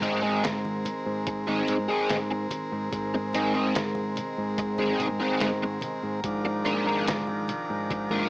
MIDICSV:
0, 0, Header, 1, 7, 480
1, 0, Start_track
1, 0, Tempo, 828729
1, 1696, Time_signature, 4, 2, 24, 8
1, 4802, End_track
2, 0, Start_track
2, 0, Title_t, "Overdriven electric guitar"
2, 0, Program_c, 0, 29
2, 12, Note_on_c, 0, 56, 74
2, 13, Note_on_c, 0, 60, 84
2, 17, Note_on_c, 0, 63, 79
2, 18, Note_on_c, 0, 68, 88
2, 125, Note_off_c, 0, 68, 0
2, 127, Note_off_c, 0, 63, 0
2, 131, Note_off_c, 0, 56, 0
2, 131, Note_off_c, 0, 60, 0
2, 132, Note_on_c, 0, 68, 79
2, 134, Note_on_c, 0, 63, 69
2, 138, Note_on_c, 0, 56, 58
2, 138, Note_on_c, 0, 60, 65
2, 248, Note_off_c, 0, 56, 0
2, 249, Note_off_c, 0, 63, 0
2, 250, Note_off_c, 0, 60, 0
2, 252, Note_off_c, 0, 68, 0
2, 852, Note_on_c, 0, 68, 91
2, 855, Note_on_c, 0, 63, 86
2, 857, Note_on_c, 0, 60, 78
2, 859, Note_on_c, 0, 56, 84
2, 1010, Note_off_c, 0, 68, 0
2, 1012, Note_off_c, 0, 63, 0
2, 1013, Note_off_c, 0, 60, 0
2, 1014, Note_off_c, 0, 56, 0
2, 1092, Note_on_c, 0, 68, 76
2, 1094, Note_on_c, 0, 63, 70
2, 1098, Note_on_c, 0, 60, 65
2, 1100, Note_on_c, 0, 56, 68
2, 1250, Note_off_c, 0, 68, 0
2, 1251, Note_off_c, 0, 63, 0
2, 1253, Note_off_c, 0, 60, 0
2, 1254, Note_off_c, 0, 56, 0
2, 1936, Note_on_c, 0, 56, 76
2, 1939, Note_on_c, 0, 60, 76
2, 1941, Note_on_c, 0, 63, 90
2, 1942, Note_on_c, 0, 68, 86
2, 2047, Note_off_c, 0, 68, 0
2, 2050, Note_off_c, 0, 63, 0
2, 2051, Note_off_c, 0, 60, 0
2, 2054, Note_on_c, 0, 68, 73
2, 2056, Note_off_c, 0, 56, 0
2, 2057, Note_on_c, 0, 63, 64
2, 2058, Note_on_c, 0, 60, 67
2, 2062, Note_on_c, 0, 56, 55
2, 2168, Note_off_c, 0, 56, 0
2, 2169, Note_off_c, 0, 60, 0
2, 2171, Note_off_c, 0, 63, 0
2, 2173, Note_off_c, 0, 68, 0
2, 2773, Note_on_c, 0, 68, 92
2, 2774, Note_on_c, 0, 63, 79
2, 2777, Note_on_c, 0, 60, 89
2, 2778, Note_on_c, 0, 56, 83
2, 2930, Note_off_c, 0, 68, 0
2, 2931, Note_off_c, 0, 63, 0
2, 2932, Note_off_c, 0, 60, 0
2, 2933, Note_off_c, 0, 56, 0
2, 3013, Note_on_c, 0, 68, 79
2, 3016, Note_on_c, 0, 63, 74
2, 3020, Note_on_c, 0, 60, 65
2, 3021, Note_on_c, 0, 56, 68
2, 3170, Note_off_c, 0, 68, 0
2, 3171, Note_off_c, 0, 63, 0
2, 3173, Note_off_c, 0, 60, 0
2, 3174, Note_off_c, 0, 56, 0
2, 3853, Note_on_c, 0, 56, 74
2, 3856, Note_on_c, 0, 62, 86
2, 3859, Note_on_c, 0, 70, 91
2, 3860, Note_on_c, 0, 65, 84
2, 3972, Note_off_c, 0, 70, 0
2, 3974, Note_off_c, 0, 56, 0
2, 3975, Note_off_c, 0, 62, 0
2, 3975, Note_off_c, 0, 65, 0
2, 3979, Note_on_c, 0, 70, 78
2, 3982, Note_on_c, 0, 65, 65
2, 3986, Note_on_c, 0, 56, 59
2, 3986, Note_on_c, 0, 62, 62
2, 4090, Note_off_c, 0, 56, 0
2, 4093, Note_off_c, 0, 62, 0
2, 4095, Note_off_c, 0, 70, 0
2, 4096, Note_off_c, 0, 65, 0
2, 4697, Note_on_c, 0, 70, 102
2, 4699, Note_on_c, 0, 65, 80
2, 4704, Note_on_c, 0, 56, 73
2, 4704, Note_on_c, 0, 62, 81
2, 4802, Note_off_c, 0, 56, 0
2, 4802, Note_off_c, 0, 62, 0
2, 4802, Note_off_c, 0, 65, 0
2, 4802, Note_off_c, 0, 70, 0
2, 4802, End_track
3, 0, Start_track
3, 0, Title_t, "Transistor combo organ"
3, 0, Program_c, 1, 18
3, 0, Note_on_c, 1, 56, 63
3, 0, Note_on_c, 1, 60, 57
3, 0, Note_on_c, 1, 70, 64
3, 3593, Note_off_c, 1, 60, 0
3, 3594, Note_off_c, 1, 56, 0
3, 3620, Note_on_c, 1, 62, 57
3, 3623, Note_on_c, 1, 53, 62
3, 4802, Note_off_c, 1, 53, 0
3, 4802, Note_off_c, 1, 62, 0
3, 4802, Note_off_c, 1, 70, 0
3, 4802, End_track
4, 0, Start_track
4, 0, Title_t, "Synth drone"
4, 0, Program_c, 2, 95
4, 0, Note_on_c, 2, 44, 71
4, 0, Note_on_c, 2, 51, 71
4, 4802, Note_off_c, 2, 44, 0
4, 4802, Note_off_c, 2, 51, 0
4, 4802, End_track
5, 0, Start_track
5, 0, Title_t, "Fingered electric bass"
5, 0, Program_c, 3, 33
5, 0, Note_on_c, 3, 44, 102
5, 506, Note_off_c, 3, 44, 0
5, 616, Note_on_c, 3, 44, 90
5, 929, Note_off_c, 3, 44, 0
5, 977, Note_on_c, 3, 44, 82
5, 1081, Note_off_c, 3, 44, 0
5, 1213, Note_on_c, 3, 44, 82
5, 1423, Note_off_c, 3, 44, 0
5, 1577, Note_on_c, 3, 44, 83
5, 1680, Note_off_c, 3, 44, 0
5, 1694, Note_on_c, 3, 44, 104
5, 2423, Note_off_c, 3, 44, 0
5, 2538, Note_on_c, 3, 44, 82
5, 2849, Note_off_c, 3, 44, 0
5, 2894, Note_on_c, 3, 44, 81
5, 2999, Note_off_c, 3, 44, 0
5, 3137, Note_on_c, 3, 44, 86
5, 3344, Note_off_c, 3, 44, 0
5, 3494, Note_on_c, 3, 44, 89
5, 3599, Note_off_c, 3, 44, 0
5, 3614, Note_on_c, 3, 44, 101
5, 4344, Note_off_c, 3, 44, 0
5, 4459, Note_on_c, 3, 44, 85
5, 4771, Note_off_c, 3, 44, 0
5, 4802, End_track
6, 0, Start_track
6, 0, Title_t, "Muted overdriven electric guitar strokes"
6, 255, Note_on_c, 9, 29, 40
6, 313, Note_off_c, 9, 29, 0
6, 735, Note_on_c, 9, 29, 41
6, 793, Note_off_c, 9, 29, 0
6, 1337, Note_on_c, 9, 29, 55
6, 1395, Note_off_c, 9, 29, 0
6, 1819, Note_on_c, 9, 29, 47
6, 1877, Note_off_c, 9, 29, 0
6, 2175, Note_on_c, 9, 29, 47
6, 2233, Note_off_c, 9, 29, 0
6, 2655, Note_on_c, 9, 29, 45
6, 2713, Note_off_c, 9, 29, 0
6, 3258, Note_on_c, 9, 29, 54
6, 3316, Note_off_c, 9, 29, 0
6, 3736, Note_on_c, 9, 29, 56
6, 3794, Note_off_c, 9, 29, 0
6, 4097, Note_on_c, 9, 29, 48
6, 4155, Note_off_c, 9, 29, 0
6, 4580, Note_on_c, 9, 29, 44
6, 4638, Note_off_c, 9, 29, 0
6, 4802, End_track
7, 0, Start_track
7, 0, Title_t, "Drums"
7, 16, Note_on_c, 9, 42, 62
7, 17, Note_on_c, 9, 63, 63
7, 74, Note_off_c, 9, 42, 0
7, 75, Note_off_c, 9, 63, 0
7, 254, Note_on_c, 9, 42, 85
7, 260, Note_on_c, 9, 38, 102
7, 312, Note_off_c, 9, 42, 0
7, 318, Note_off_c, 9, 38, 0
7, 376, Note_on_c, 9, 63, 78
7, 434, Note_off_c, 9, 63, 0
7, 493, Note_on_c, 9, 64, 73
7, 497, Note_on_c, 9, 42, 59
7, 551, Note_off_c, 9, 64, 0
7, 555, Note_off_c, 9, 42, 0
7, 734, Note_on_c, 9, 42, 84
7, 736, Note_on_c, 9, 36, 101
7, 792, Note_off_c, 9, 42, 0
7, 794, Note_off_c, 9, 36, 0
7, 859, Note_on_c, 9, 63, 73
7, 917, Note_off_c, 9, 63, 0
7, 971, Note_on_c, 9, 64, 72
7, 975, Note_on_c, 9, 42, 65
7, 1029, Note_off_c, 9, 64, 0
7, 1033, Note_off_c, 9, 42, 0
7, 1213, Note_on_c, 9, 42, 81
7, 1219, Note_on_c, 9, 38, 98
7, 1271, Note_off_c, 9, 42, 0
7, 1276, Note_off_c, 9, 38, 0
7, 1451, Note_on_c, 9, 63, 70
7, 1451, Note_on_c, 9, 64, 81
7, 1454, Note_on_c, 9, 42, 70
7, 1509, Note_off_c, 9, 63, 0
7, 1509, Note_off_c, 9, 64, 0
7, 1512, Note_off_c, 9, 42, 0
7, 1695, Note_on_c, 9, 36, 107
7, 1695, Note_on_c, 9, 42, 87
7, 1752, Note_off_c, 9, 42, 0
7, 1753, Note_off_c, 9, 36, 0
7, 1929, Note_on_c, 9, 63, 68
7, 1937, Note_on_c, 9, 42, 70
7, 1987, Note_off_c, 9, 63, 0
7, 1995, Note_off_c, 9, 42, 0
7, 2174, Note_on_c, 9, 42, 91
7, 2179, Note_on_c, 9, 38, 101
7, 2232, Note_off_c, 9, 42, 0
7, 2237, Note_off_c, 9, 38, 0
7, 2287, Note_on_c, 9, 63, 80
7, 2345, Note_off_c, 9, 63, 0
7, 2409, Note_on_c, 9, 64, 76
7, 2415, Note_on_c, 9, 42, 64
7, 2467, Note_off_c, 9, 64, 0
7, 2473, Note_off_c, 9, 42, 0
7, 2653, Note_on_c, 9, 36, 103
7, 2653, Note_on_c, 9, 42, 87
7, 2711, Note_off_c, 9, 36, 0
7, 2711, Note_off_c, 9, 42, 0
7, 2769, Note_on_c, 9, 63, 76
7, 2827, Note_off_c, 9, 63, 0
7, 2890, Note_on_c, 9, 64, 69
7, 2896, Note_on_c, 9, 42, 62
7, 2948, Note_off_c, 9, 64, 0
7, 2954, Note_off_c, 9, 42, 0
7, 3130, Note_on_c, 9, 42, 78
7, 3135, Note_on_c, 9, 38, 99
7, 3188, Note_off_c, 9, 42, 0
7, 3193, Note_off_c, 9, 38, 0
7, 3366, Note_on_c, 9, 63, 75
7, 3366, Note_on_c, 9, 64, 82
7, 3372, Note_on_c, 9, 42, 62
7, 3424, Note_off_c, 9, 63, 0
7, 3424, Note_off_c, 9, 64, 0
7, 3430, Note_off_c, 9, 42, 0
7, 3613, Note_on_c, 9, 42, 83
7, 3614, Note_on_c, 9, 36, 110
7, 3671, Note_off_c, 9, 42, 0
7, 3672, Note_off_c, 9, 36, 0
7, 3848, Note_on_c, 9, 63, 67
7, 3858, Note_on_c, 9, 42, 68
7, 3905, Note_off_c, 9, 63, 0
7, 3916, Note_off_c, 9, 42, 0
7, 4098, Note_on_c, 9, 42, 83
7, 4103, Note_on_c, 9, 38, 103
7, 4156, Note_off_c, 9, 42, 0
7, 4161, Note_off_c, 9, 38, 0
7, 4212, Note_on_c, 9, 63, 74
7, 4270, Note_off_c, 9, 63, 0
7, 4333, Note_on_c, 9, 64, 68
7, 4338, Note_on_c, 9, 42, 62
7, 4391, Note_off_c, 9, 64, 0
7, 4396, Note_off_c, 9, 42, 0
7, 4578, Note_on_c, 9, 36, 101
7, 4579, Note_on_c, 9, 42, 80
7, 4636, Note_off_c, 9, 36, 0
7, 4637, Note_off_c, 9, 42, 0
7, 4687, Note_on_c, 9, 63, 68
7, 4745, Note_off_c, 9, 63, 0
7, 4802, End_track
0, 0, End_of_file